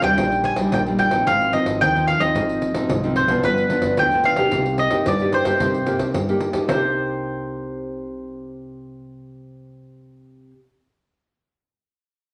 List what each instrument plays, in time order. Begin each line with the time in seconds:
Already playing: nylon-string guitar C3
0.02 upright bass D#2, nylon-string guitar G3 D4 D#4, mandolin G5, pandeiro
0.17 upright bass A#1, nylon-string guitar A#2, pandeiro
0.32 pandeiro
0.44 mandolin G#5, pandeiro
0.56 upright bass A#1, nylon-string guitar G3 D4 D#4, pandeiro
0.72 upright bass A#1, nylon-string guitar A#2, mandolin G5, pandeiro
0.86 nylon-string guitar G3 D4 D#4, pandeiro
0.99 mandolin G5, pandeiro
1.11 upright bass A#1, nylon-string guitar F3 C4 D#4, pandeiro
1.27 upright bass G#1, nylon-string guitar G#2, mandolin F5, pandeiro
1.41 pandeiro
1.53 nylon-string guitar F3 C4 D#4, mandolin D#5, pandeiro
1.66 upright bass G#1, pandeiro
1.81 upright bass D#2, nylon-string guitar D#3, mandolin G5, pandeiro
1.95 nylon-string guitar F3 C4 D#4, pandeiro
2.08 mandolin F5, pandeiro
2.20 upright bass D#2, nylon-string guitar F3 C4 D#4, mandolin D#5, pandeiro
2.35 upright bass G#1, nylon-string guitar G#2, pandeiro
2.49 pandeiro
2.62 pandeiro
2.74 upright bass C2, nylon-string guitar F3 C4 D#4, pandeiro
2.89 upright bass C2, nylon-string guitar G#2, pandeiro
3.04 nylon-string guitar F3 C4 D#4, pandeiro
3.16 mandolin C5, pandeiro
3.28 upright bass C2, nylon-string guitar F3 B3 D4, pandeiro
3.43 upright bass G1, nylon-string guitar G2, mandolin B4, pandeiro
3.58 pandeiro
3.70 nylon-string guitar F3 B3 D4, pandeiro
3.82 upright bass G1, pandeiro
3.97 upright bass D2, nylon-string guitar D3, mandolin G5, pandeiro
4.12 nylon-string guitar F3 B3 D4, pandeiro
4.24 mandolin F5, pandeiro
4.35 upright bass B1, nylon-string guitar A#3 D#4 G4, pandeiro
4.51 upright bass C2, nylon-string guitar C3, pandeiro
4.66 pandeiro
4.78 mandolin D#5, pandeiro
4.90 upright bass G2, nylon-string guitar A#3 D#4 G4, pandeiro
5.06 upright bass G2, nylon-string guitar G2, mandolin D5, pandeiro
5.20 nylon-string guitar A#3 D#4 G4, pandeiro
5.32 mandolin C5, pandeiro
5.45 upright bass G2, nylon-string guitar A#3 D#4 G4, pandeiro
5.60 upright bass G2, nylon-string guitar C3 A#3 D#4 G4, pandeiro
5.74 pandeiro
5.86 nylon-string guitar A#3 D#4 G4, pandeiro
5.99 upright bass C2, pandeiro
6.14 upright bass G2, nylon-string guitar G2, pandeiro
6.29 nylon-string guitar A#3 D#4 G4, pandeiro
6.40 pandeiro
6.53 upright bass G2, nylon-string guitar A#3 D#4 G4, pandeiro
6.67 upright bass C2, nylon-string guitar C3 A#3 D#4, mandolin C5, pandeiro
6.73 nylon-string guitar G4